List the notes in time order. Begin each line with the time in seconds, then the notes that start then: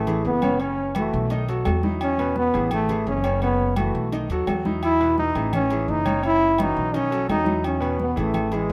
Already playing: A1 A3
0.07 E3 E4 G#4, high conga, low conga, low agogo
0.25 F#1 B3, high conga, low timbale
0.42 C#3 C#4 C#5, high conga, low agogo
0.60 C#3 C#4 C#5, high conga, low agogo
0.78 high conga
0.95 E3 A3 E4 F#4, high conga, low agogo
1.13 B1, high conga
1.30 D#3 D#4 D#5, high conga, low agogo
1.49 F#3 F#4 A4, high conga, low agogo
1.65 E2 F#3 F#4 A4, high conga, low timbale, low agogo
1.83 F#3 D#4 E4, high conga
2.00 C#4, high conga, low agogo
2.18 B2 B3 B4, high conga, low agogo
2.36 B3, high conga
2.53 A1 E3 E4 G#4, high conga, low agogo
2.71 A3, high conga, low conga, low agogo
2.89 E3 E4 G#4, high conga, low conga, low agogo
3.07 F#1 C#4, high conga, low timbale
3.24 C#3 C#4 C#5, low agogo
3.42 C#3 B3 C#4 C#5, high conga, low agogo
3.60 high conga
3.76 E3 A3 E4 F#4, high conga, low agogo
3.94 B1, high conga
4.12 D#3 D#4 D#5, high conga, low agogo
4.29 D#2 F#3 F#4 A4, high conga, low agogo
4.47 E2 F#3 F#4 A4, high conga, low timbale, low agogo
4.65 F#3 D#4 E4, high conga
4.83 E4, high conga, low agogo
5.00 B2 B3 B4, high conga, low agogo
5.18 D#4, high conga
5.35 A1 E3 E4 G#4, high conga, low agogo
5.53 C#4, high conga, low conga, low agogo
5.70 E3 E4 G#4, high conga, low agogo
5.88 F#1 D#4, high conga
6.05 C#3 C#4 C#5, high conga, low agogo
6.22 C#3 C#4 E4 C#5, high conga, low agogo
6.42 high conga
6.58 E3 C#4 D#4 F#4, high conga, low agogo
6.77 B1, high conga
6.94 D#3 C#4 D#4 D#5, high conga, low agogo
7.11 F#3 F#4 A4, high conga, low agogo
7.28 E2 F#3 D#4 F#4 A4, high conga, low timbale, low agogo
7.44 F#3 D#4 E4, high conga
7.64 C#4, high conga, low agogo
7.80 B2 B3 B4, high conga, low agogo
7.99 B3, high conga
8.16 A1 E3 A3 E4 G#4, high conga, low agogo
8.34 high conga, low conga, low agogo
8.51 E3 G#3 E4 G#4, high conga, low agogo
8.69 high conga